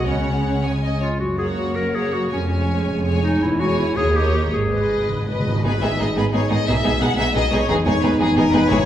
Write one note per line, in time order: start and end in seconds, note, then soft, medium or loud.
0.06 1.01 C#2 soft
0.06 1.01 C#3 soft
0.06 0.62 G#3 soft
0.06 0.62 C#4 medium
0.06 0.62 C#5 soft
0.06 0.62 F#5 soft
0.62 1.00 G#3 soft
0.62 0.71 C#5 medium
0.62 1.00 G#5 soft
0.82 1.00 D#5 medium
1.01 1.18 F4 medium
1.01 1.08 C#5 soft
1.19 1.69 F#1 medium
1.19 1.69 F#2 medium
1.19 1.38 F#4 medium
1.38 1.93 A#3 soft
1.38 1.47 G#4 medium
1.38 1.93 C#5 soft
1.38 1.92 F#5 soft
1.57 1.77 F#4 medium
1.76 2.25 F#1 soft
1.76 2.25 F#2 soft
1.76 1.97 A#4 medium
1.93 2.31 A#3 soft
1.93 2.15 G#4 medium
1.93 2.30 C#5 soft
1.93 2.30 F#5 soft
2.13 2.32 F#4 medium
2.30 2.80 F1 medium
2.30 2.80 F2 medium
2.30 2.48 G#3 soft
2.30 3.04 C#4 medium
2.30 2.48 C#5 soft
2.30 2.48 G#5 soft
2.49 3.03 G#3 soft
2.49 3.03 C#5 soft
2.49 3.03 G#5 soft
2.86 3.34 F1 medium
2.86 3.35 F2 medium
3.04 3.40 G#3 soft
3.04 3.40 C#5 medium
3.04 3.40 G#5 soft
3.23 3.44 D#4 medium
3.41 3.89 E1 medium
3.41 3.90 E2 medium
3.41 3.62 E4 medium
3.59 3.96 G#3 medium
3.59 3.78 F#4 medium
3.59 3.95 C#5 medium
3.59 3.95 G#5 medium
3.79 3.98 E4 medium
3.96 4.46 D#2 medium
3.96 4.14 A#3 medium
3.96 4.18 G#4 medium
3.96 4.14 C#5 medium
3.96 4.14 D#5 medium
4.15 4.52 A#3 soft
4.15 4.34 G4 medium
4.15 4.52 C#5 medium
4.15 4.52 D#5 medium
4.34 4.43 G4 medium
4.52 5.02 G#1 medium
4.52 5.02 G#2 medium
4.52 4.60 G#2 soft
4.52 5.08 G#4 medium
4.72 5.26 G#3 soft
4.72 5.26 B4 soft
4.72 5.27 D#5 soft
4.77 4.83 G#2 soft
4.93 4.99 G#2 soft
5.00 5.07 G#2 soft
5.08 5.59 G#1 medium
5.08 5.15 G#2 medium
5.08 5.59 G#2 medium
5.16 5.22 G#2 medium
5.24 5.30 G#2 medium
5.24 5.64 B4 soft
5.28 5.39 G#2 medium
5.28 5.64 G#3 soft
5.28 5.64 D#5 soft
5.40 5.46 G#2 medium
5.47 5.55 G#2 medium
5.56 5.63 G#2 medium
5.64 5.71 G#1 medium
5.64 5.72 G#2 medium
5.64 5.72 G#3 medium
5.64 7.65 G#3 medium
5.64 5.72 B3 soft
5.64 5.72 D#4 medium
5.64 7.66 D#4 medium
5.64 5.72 G#4 medium
5.64 5.80 B4 medium
5.82 5.89 G#1 medium
5.82 5.89 G#2 soft
5.82 5.89 G#3 soft
5.82 5.89 B3 soft
5.82 5.89 D#4 soft
5.82 5.89 G#4 soft
5.82 5.99 E5 medium
5.99 6.06 G#1 medium
5.99 6.06 G#2 medium
5.99 6.06 G#3 soft
5.99 6.06 B3 soft
5.99 6.06 D#4 soft
5.99 6.06 G#4 soft
5.99 6.17 D#5 medium
6.16 6.23 G#1 medium
6.16 6.23 G#2 medium
6.16 6.23 G#3 medium
6.16 6.23 B3 medium
6.16 6.23 D#4 medium
6.16 6.23 G#4 soft
6.16 6.24 B4 medium
6.33 6.40 G#1 medium
6.33 6.41 G#2 medium
6.33 6.40 G#3 soft
6.33 6.40 B3 soft
6.33 6.40 D#4 medium
6.33 6.40 G#4 medium
6.33 6.51 C#5 medium
6.50 6.58 G#1 medium
6.50 6.57 G#2 medium
6.50 6.57 G#3 soft
6.50 6.57 B3 soft
6.50 6.57 D#4 soft
6.50 6.57 G#4 soft
6.50 6.67 D#5 medium
6.67 6.75 B1 medium
6.67 6.75 B2 medium
6.67 6.75 G#3 medium
6.67 6.74 B3 medium
6.67 6.74 D#4 medium
6.67 6.74 G#4 medium
6.67 7.01 E5 medium
6.83 6.91 B1 medium
6.83 6.92 B2 medium
6.83 6.90 G#3 medium
6.83 6.91 B3 soft
6.83 6.91 D#4 soft
6.83 6.91 G#4 soft
7.01 7.08 B1 medium
7.01 7.08 B2 medium
7.01 7.08 G#3 soft
7.01 7.08 B3 medium
7.01 7.08 D#4 soft
7.01 7.08 G#4 soft
7.01 7.18 F#5 medium
7.18 7.25 B1 medium
7.18 7.25 B2 medium
7.18 7.25 G#3 medium
7.18 7.24 B3 medium
7.18 7.25 D#4 medium
7.18 7.25 G#4 medium
7.18 7.35 E5 medium
7.34 7.42 B1 medium
7.34 7.42 B2 medium
7.34 7.41 G#3 soft
7.34 7.41 B3 medium
7.34 7.42 D#4 medium
7.34 7.42 G#4 medium
7.34 7.52 D#5 medium
7.51 7.59 B1 medium
7.51 7.59 B2 medium
7.51 7.58 G#3 medium
7.51 7.58 B3 medium
7.51 7.59 D#4 medium
7.51 7.59 G#4 medium
7.51 7.69 C#5 medium
7.69 7.76 E1 medium
7.69 7.77 E2 medium
7.69 7.76 G#3 medium
7.69 7.76 B3 medium
7.69 8.85 B3 medium
7.69 7.76 D#4 medium
7.69 8.69 D#4 medium
7.69 7.75 G#4 medium
7.69 7.76 G#4 medium
7.86 7.93 E1 medium
7.86 7.93 E2 medium
7.86 7.93 G#3 medium
7.86 7.93 B3 medium
7.86 7.93 D#4 medium
7.86 7.93 G#4 medium
7.86 8.02 C#5 medium
8.03 8.10 E1 medium
8.03 8.10 E2 medium
8.03 8.10 G#3 medium
8.03 8.10 B3 medium
8.03 8.10 D#4 medium
8.03 8.10 G#4 medium
8.03 8.20 B4 medium
8.20 8.27 E1 medium
8.20 8.26 E2 medium
8.20 8.27 G#3 medium
8.20 8.26 B3 medium
8.20 8.27 D#4 medium
8.20 8.36 G#4 medium
8.20 8.27 G#4 medium
8.36 8.44 E1 medium
8.36 8.43 E2 medium
8.36 8.44 G#3 medium
8.36 8.44 B3 medium
8.36 8.43 D#4 medium
8.36 8.43 G#4 medium
8.36 8.53 A#4 medium
8.53 8.60 E1 medium
8.53 8.60 E2 medium
8.53 8.60 G#3 medium
8.53 8.60 B3 medium
8.53 8.61 D#4 medium
8.53 8.60 G#4 medium
8.53 8.70 B4 medium
8.69 8.77 G#1 medium
8.69 8.77 G#2 medium
8.69 8.85 G#2 medium
8.69 8.77 G#3 medium
8.69 8.77 B3 medium
8.69 8.77 E4 medium
8.69 8.85 E4 medium
8.69 8.77 G#4 medium
8.69 8.85 C#5 medium